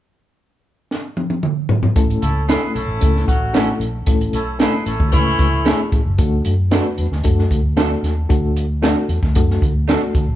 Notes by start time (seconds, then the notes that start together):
0.91 snare
1.17 high tom
1.30 high tom
1.43 mid tom
1.69 floor tom
1.83 floor tom
1.96 A1 A3 C#4 E4 A4, kick, closed hi-hat
2.10 closed hi-hat
2.21 C#2 A3 C#4 E4 A4, closed hi-hat
2.48 A3 B3 C#4 E4 G#4 A4 B4, snare, closed hi-hat
2.75 B1 A3 C#4 E4 A4, closed hi-hat
2.89 A1
3.01 C#2 A3 C#4 E4 A4, kick, closed hi-hat
3.16 snare
3.28 A1 F#3 A3 C#4 F#4, kick, closed hi-hat
3.53 A3 C#4 E4 A4, snare, closed hi-hat
3.80 A#1, closed hi-hat
4.06 A1 A3 C#4 E4 A4, kick, closed hi-hat
4.21 closed hi-hat
4.33 B1 A3 C#4 E4 A4, closed hi-hat
4.59 A3 B3 C#4 E4 G#4 A4 B4, snare, closed hi-hat
4.86 A1 A3 C#4 E4 A4, closed hi-hat
5.00 D2, kick
5.12 C#2 E3 A3 C#4 E4 B4, kick, closed hi-hat
5.39 C#2, kick, closed hi-hat
5.65 A3 C#4 E4 G#4 A4, snare, closed hi-hat
5.92 A1, kick, closed hi-hat
6.06 F#1
6.18 D2 A3 D4 F#4 A4, kick, closed hi-hat
6.45 F#2, closed hi-hat
6.71 A3 D4 F#4 A4 B4, snare, closed hi-hat
6.98 E2, closed hi-hat
7.11 D2, snare
7.24 F#2 A3 D4 F#4 A4, kick, closed hi-hat
7.39 snare
7.51 D2, kick, closed hi-hat
7.77 A3 D4 F#4 A4, snare, closed hi-hat
8.03 D#2, snare, closed hi-hat
8.29 D2 A3 D4 F#4 A4, kick, closed hi-hat
8.56 closed hi-hat
8.82 A3 D4 F#4 A4, snare, closed hi-hat
9.09 E2, closed hi-hat
9.23 D2, kick, snare
9.35 F#2 A3 D4 F#4 A4, kick, closed hi-hat
9.51 snare
9.62 D2, kick, closed hi-hat
9.88 A3 D4 F#4 A4, snare, closed hi-hat
10.15 D2, kick, closed hi-hat
10.27 A#1